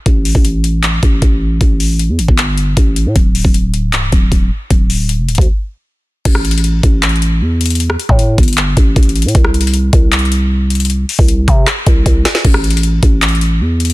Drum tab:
CC |------------------------------------------------------------------------------------------------|------------------------------------------------------------------------------------------------|------------------------------------------------------------------------------------------------|------------------------------------------------------------------------------------------------|
HH |x-----------o-----------x-----------x-----------x-----------x-----------x-----------------------|x-----------o-----------x-----------x-----------x-----------x-----------x-----------x-----------|x-----------o-----------x-----------x-----------x-----------x-----------x-----------------------|x-----------o-----------x-----------x---x---x---------------------------------------------------|
CP |------------------------------------------------x-----------------------------------------------|------------------------------------------------x-----------------------------------------------|------------------------------------------------x-----------------------------------------------|------------------------------------------------------------------------------------------------|
SD |------------------------------------------------------------------------------------------------|------------------------------------------------------------------------------------------------|------------------------------------------------------------------------------------------------|------------------------------------------------------------------------------------------------|
BD |o-----------------o-----------------------------------------o-----------o-----------------------|o-----------------------------------------o-----------------------------o-----------------------|o-----------------o-----------------------------------------o-----------o-----------------------|o-----------------------------------------o-----------------------------------------------------|

CC |x-----------------------------------------------------------------------------------------------|------------------------------------------------------------------------------------------------|------------------------------------------------------------------------------------------------|------------------------------------------------------------------------------------------------|
HH |x-----------x---x---x---x-----------x-----------x---x---x---x-----------------------x--x--x--x--|x-----------x-----------x-----------x--x--x--x--x-----------x-----------x---x---x---x---x---x---|x-----------x---x---x---x-----------x-----------x---x---x---x-----------------------x--x--x--x--|x-----------o-----------x-----------x-----------x-----------x-----------x-----------x-----------|
CP |------------------------------------------------x-----------------------------------------------|------------------------------------------------x-----------------------------------------------|------------------------------------------------x-----------------------------------------------|------------------------------------------------x-----------------------------------------------|
SD |------r-----------------------------------------------------------------------------------------|------r-----------------------------------------------------------------------------------------|------r-----------------------------------------------------------------------------------------|------------------------------------------------r-----------------------------------o-----o-----|
BD |o-----------------------------------o-----------------------------------------------------------|------------------o-----------------o-----------------------o-----------o-----------------------|o-----------------------------------o-----------------------------------------------------------|------------------o-----------------o-----------------------o-----------o-----------------------|

CC |x-----------------------------------------------------------------------------------------------|
HH |------------x---x---x---x-----------x-----------x---x---x---x-----------------------x--x--x-----|
CP |------------------------------------------------x-----------------------------------------------|
SD |------r-----------------------------------------------------------------------------------------|
BD |o-----------------------------------o-----------------------------------------------------------|